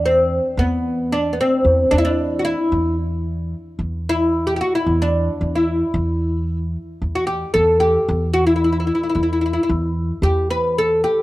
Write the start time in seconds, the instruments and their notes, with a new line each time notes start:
Already playing: upright bass E2
0.06 oud C4
0.57 upright bass E2, oud B3
1.12 oud D4
1.33 oud B3
1.41 oud C4
1.65 upright bass E2
1.91 upright bass E2, oud D4
1.98 oud E4
2.05 oud D4
2.39 oud F#4
2.45 oud E4
2.72 upright bass E2
3.79 upright bass E2
4.09 oud E4
4.47 oud G4
4.56 oud G4
4.61 oud F#4
4.75 oud E4
4.86 upright bass E2
5.02 oud D4
5.41 upright bass E2
5.55 oud E4
5.94 upright bass E2
7.02 upright bass E2
7.15 oud F#4
7.27 oud G4
7.54 upright bass E2, oud A4
7.80 oud G4
8.08 upright bass E2
8.34 oud F#4
8.47 oud E4
8.56 oud E4
8.64 oud E4
8.72 oud E4
8.80 oud E4
8.87 oud E4
8.95 oud E4
9.03 oud E4
9.10 oud E4
9.15 upright bass E2, oud E4
9.23 oud E4
9.33 oud E4
9.41 oud E4
9.46 oud E4
9.53 oud E4
9.63 oud E4
9.69 upright bass E2
10.22 upright bass E2, oud G4
10.50 oud B4
10.78 oud A4
11.04 oud G4